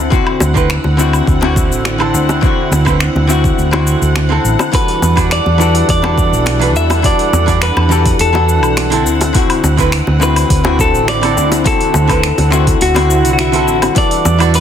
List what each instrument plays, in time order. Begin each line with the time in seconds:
Already playing: fingered electric bass D2, string section D3 C4 E4 F#5
0.10 hollow-body jazz guitar D3 C4 E4 F#4, kick, cabasa
0.27 low woodblock
0.40 fingered electric bass D2, high bongo, cabasa
0.54 hollow-body jazz guitar D3 C4 E4 B4, kick, cabasa
0.70 finger snap, cabasa
0.84 fingered electric bass D2, high bongo
0.97 hollow-body jazz guitar D3 C4 E4 F#4, cabasa
1.13 cabasa, low woodblock
1.27 fingered electric bass D2, kick, cabasa
1.41 hollow-body jazz guitar D3 C4 E4 F#4, high bongo
1.56 kick, cabasa
1.71 fingered electric bass A1, cabasa
1.85 finger snap, high bongo, cabasa
1.98 hollow-body jazz guitar D3 C4 E4 A4, low woodblock
2.14 fingered electric bass D2, cabasa
2.29 high bongo, cabasa
2.41 hollow-body jazz guitar D3 C4 E4 F#4, kick, cabasa
2.71 fingered electric bass D2, high bongo, cabasa
2.85 hollow-body jazz guitar D3 C4 E4 B4, kick, cabasa, low woodblock
3.00 finger snap, cabasa
3.15 fingered electric bass D2, high bongo
3.27 hollow-body jazz guitar D3 C4 E4 F#4, cabasa
3.44 kick, cabasa
3.58 fingered electric bass D2, cabasa
3.71 hollow-body jazz guitar D3 C4 E4 F#4, high bongo, low woodblock
3.87 cabasa
4.02 fingered electric bass D2, cabasa
4.16 finger snap, high bongo, cabasa
4.29 hollow-body jazz guitar D3 C4 E4 A4
4.44 fingered electric bass A1, cabasa
4.59 high bongo, cabasa, low woodblock
4.72 hollow-body jazz guitar E3 D4 F#4 A4, string section E3 G3 D4 A4, clean electric guitar B4, kick, open hi-hat, cabasa
4.88 open hi-hat
5.02 fingered electric bass E2, high bongo, cabasa
5.16 hollow-body jazz guitar E3 D4 F#4 D5, kick, open hi-hat, cabasa, low woodblock
5.31 clean electric guitar D5, finger snap, open hi-hat, cabasa
5.46 fingered electric bass E2, high bongo
5.58 hollow-body jazz guitar E3 D4 F#4 G4 A4, cabasa
5.75 open hi-hat, cabasa
5.89 fingered electric bass E2, clean electric guitar D5, kick, open hi-hat, cabasa
6.02 hollow-body jazz guitar E3 D4 F#4 A4, high bongo, low woodblock
6.18 kick, cabasa
6.32 fingered electric bass B1, cabasa
6.46 finger snap, open hi-hat, high bongo, cabasa
6.59 hollow-body jazz guitar E3 D4 F#4 B4, open hi-hat
6.75 fingered electric bass E2, clean electric guitar E5, cabasa
6.90 open hi-hat, high bongo, cabasa, low woodblock
7.02 hollow-body jazz guitar E3 D4 F#4 A4, clean electric guitar D5, kick, open hi-hat, cabasa
7.19 open hi-hat
7.33 fingered electric bass E2, high bongo, cabasa
7.46 hollow-body jazz guitar E3 D4 F#4 D5, kick, open hi-hat, cabasa
7.62 clean electric guitar B4, finger snap, open hi-hat, cabasa
7.76 fingered electric bass E2, high bongo, low woodblock
7.89 hollow-body jazz guitar E3 D4 F#4 G4 A4, cabasa
8.06 kick, open hi-hat, cabasa
8.19 fingered electric bass E2, clean electric guitar A4, open hi-hat, cabasa
8.33 hollow-body jazz guitar E3 D4 F#4 A4, high bongo
8.49 cabasa
8.63 fingered electric bass B1, cabasa, low woodblock
8.77 finger snap, open hi-hat, high bongo, cabasa
8.90 hollow-body jazz guitar D3 C4 E4 A4, open hi-hat
9.05 fingered electric bass D2, string section D3 C4 E4, cabasa
9.21 open hi-hat, high bongo, cabasa
9.33 hollow-body jazz guitar D3 C4 E4 F#4, kick, open hi-hat, cabasa
9.50 open hi-hat, low woodblock
9.64 fingered electric bass D2, high bongo, cabasa
9.77 hollow-body jazz guitar D3 C4 E4 B4, kick, open hi-hat, cabasa
9.92 finger snap, open hi-hat, cabasa
10.07 fingered electric bass D2, high bongo
10.20 hollow-body jazz guitar D3 C4 E4 F#4, clean electric guitar B4, cabasa
10.36 open hi-hat, cabasa, low woodblock
10.50 fingered electric bass D2, kick, open hi-hat, cabasa
10.64 hollow-body jazz guitar D3 C4 E4 F#4, high bongo
10.79 clean electric guitar A4, kick, cabasa
10.94 fingered electric bass A1, cabasa
11.08 clean electric guitar D5, finger snap, open hi-hat, high bongo, cabasa
11.21 hollow-body jazz guitar D3 C4 E4 A4, open hi-hat, low woodblock
11.37 fingered electric bass D2, cabasa
11.52 open hi-hat, high bongo, cabasa
11.64 hollow-body jazz guitar D3 C4 E4 F#4, clean electric guitar A4, kick, open hi-hat, cabasa
11.81 open hi-hat
11.94 fingered electric bass D2, high bongo, cabasa
12.07 hollow-body jazz guitar D3 C4 E4 B4, kick, open hi-hat, cabasa, low woodblock
12.23 finger snap, open hi-hat, cabasa
12.38 fingered electric bass D2, open hi-hat, high bongo
12.50 hollow-body jazz guitar D3 C4 E4 F#4, finger snap, cabasa
12.67 kick, open hi-hat, cabasa
12.81 fingered electric bass D2, clean electric guitar F#4, open hi-hat, swell, cabasa
12.94 hollow-body jazz guitar D3 C4 E4 F#4, open hi-hat, high bongo, low woodblock
13.10 cabasa
13.25 fingered electric bass C2, open hi-hat, cabasa
13.33 clean electric guitar F#4
13.38 clean electric guitar E4 F#4, finger snap, open hi-hat, high bongo, cabasa
13.52 hollow-body jazz guitar D3 C4 E4 A4, open hi-hat
13.68 fingered electric bass A1, cabasa
13.82 open hi-hat, high bongo, cabasa, low woodblock
13.95 hollow-body jazz guitar E3 D4 F#4 A4, string section E3 G3 D4 A4 F#5, clean electric guitar D5, kick, open hi-hat, cabasa
14.11 open hi-hat, cabasa
14.25 fingered electric bass E2, high bongo, cabasa
14.38 hollow-body jazz guitar E3 D4 F#4 D5, open hi-hat, cabasa, low woodblock
14.54 clean electric guitar B4, open hi-hat, cabasa